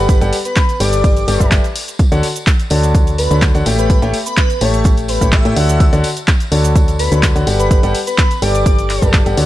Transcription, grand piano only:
Already playing: G3 G4 A4 B4 D5 F#5
0.21 G3 G4 A4 B4 D5 F#5
0.80 G3 G4 A4 B4 D5 G5
1.28 G3 G4 A4 B4 D5 G5
1.40 G3 G4 A4 B4 D5 E5
2.12 D3 F#4 A4 C#5 D5 F#5
2.71 D3 F#4 A4 C#5 D5 A5
3.31 D3 F#4 A4 C#5 D5 B5
3.55 D3 F#4 A4 C#5 D5 F#5
3.66 A3 G4 A4 C#5 E5 G5
4.02 A3 G4 A4 C#5 E5 G5
4.61 A3 G4 A4 C#5 E5 A5
5.21 A3 G4 A4 C#5 E5 B5
5.45 A3 G4 A4 C#5 E5 G5
5.56 D3 F#4 A4 C#5 D5 F#5
5.93 D3 F#4 A4 C#5 D5 F#5
6.52 D3 F#4 A4 C#5 D5 A5
7.12 D3 F#4 A4 C#5 D5 B5
7.36 D3 F#4 A4 C#5 D5 F#5
7.47 G3 G4 A4 B4 D5 F#5
7.83 G3 G4 A4 B4 D5 F#5
8.42 G3 G4 A4 B4 D5 G5
9.02 G3 G4 A4 B4 D5 A5
9.26 G3 G4 A4 B4 D5 F#5
9.37 D3 F#4 A4 C#5 D5 F#5

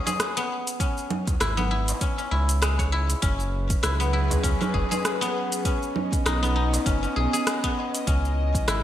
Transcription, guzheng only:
Already playing: B3 C#4 E4
0.06 G#4
0.37 B3
0.80 C#4
1.40 E4
1.57 B3
1.71 E4
2.01 C#4
2.18 C#4
2.31 E4
2.62 G#3
2.79 C#5
2.92 E4
3.22 C#4
3.83 E4
4.00 B3
4.13 E4
4.43 C#4
4.61 C#4
4.74 G#4
4.91 G#4
5.21 B3
5.65 C#4
6.26 D#4
6.43 B3
6.56 D#4
6.86 C#4
7.03 C#4
7.16 G#4
7.33 G#4
7.64 B3
8.07 C#4
8.68 E4

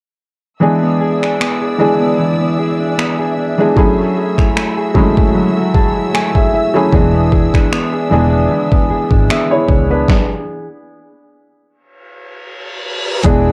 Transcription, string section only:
0.61 D5 E5 E6
3.77 F#3 F#4 E6
6.93 D4
13.24 D5 G#5 E6

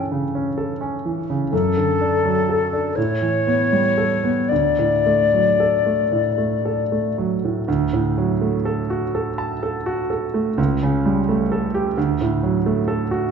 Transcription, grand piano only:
Already playing: G2 C#3 E3 C#4 A4
0.12 C#3
0.35 C#4
0.58 A4
0.81 C#4
1.05 E3
1.30 C#3
1.53 F#2
1.77 D3
2.01 D4
2.25 F#3
2.49 A4
2.73 D4
2.97 A2
3.22 E3
3.47 B3
3.72 G3
3.98 A4
4.24 B3
4.51 D2
4.79 A2
5.06 A3
5.33 F#3
5.60 A4
5.86 A3
6.12 A2
6.38 A3
6.65 A4
6.92 A3
7.18 F#3
7.44 A2
7.68 D2
7.93 A2
8.18 F#3
8.41 A3
8.65 A4
8.90 F#4
9.15 A4
9.38 A5
9.63 A4
9.86 F#4
10.10 A4
10.34 A3
10.58 C#2
10.83 C#3
11.05 G3
11.29 A3
11.52 A4
11.74 G4
11.97 D2
12.21 A2
12.43 F#3
12.66 A3
12.88 A4
13.11 F#4

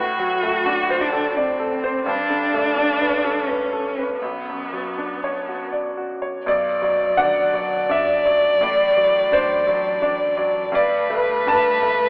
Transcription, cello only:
Already playing: F#4
1.01 D4
1.35 C4
2.06 D4
3.46 C#4
4.20 B3
6.48 F#3
10.74 A3

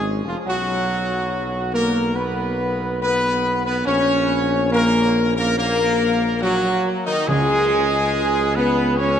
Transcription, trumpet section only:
0.27 F4
0.47 F#4
1.74 A#4
2.15 B4
3.02 B4
3.66 B4
3.86 C#5
4.73 A#4
5.37 A#4
5.57 A#4
6.41 F#4
7.06 D#4
7.27 G#4
8.55 B4
8.96 C#5

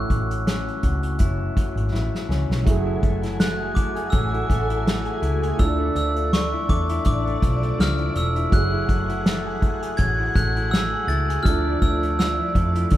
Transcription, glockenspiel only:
Already playing: F#6
3.40 F#6
3.75 D6
4.10 E6
5.59 E6
5.97 E6
6.33 C#6
6.69 D6
7.07 D6
7.81 F6
8.17 E6
8.53 F#6
9.97 G#6
10.36 F#6
10.71 E6
11.08 A6
11.43 F6
11.82 E6
12.19 E6

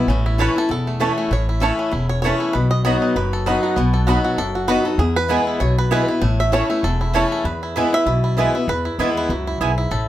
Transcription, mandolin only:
0.39 A3 E4 C#5 A5
1.00 A3 E4 C#5 A5
1.62 A3 E4 C#5 A5
2.24 A3 E4 C#5 A5
2.85 B3 F#4 D#5 B5
3.46 B3 F#4 D#5 B5
4.08 B3 F#4 D#5 B5
4.68 B3 F#4 D#5 B5
5.29 B3 E4 B4 G#5
5.91 B3 E4 B4 G#5
6.53 A3 E4 C#5 A5
7.14 A3 E4 C#5 A5
7.76 B3 E4 B4 G#5
8.38 B3 E4 B4 G#5
8.99 B3 E4 B4 G#5
9.61 B3 E4 B4 G#5

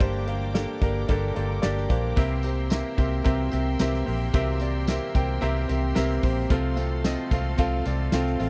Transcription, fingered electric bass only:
0.01 G1
0.82 G1
1.09 G1
1.37 G1
1.64 G1
1.90 A#1
2.17 C2
2.98 C2
3.26 C2
3.53 C2
3.80 C2
4.08 A#1
4.34 C2
5.15 C2
5.42 C2
5.69 C2
5.97 C2
6.23 A#1
6.50 C2
7.31 C2
7.59 C2
7.86 C2
8.13 C2
8.40 A1

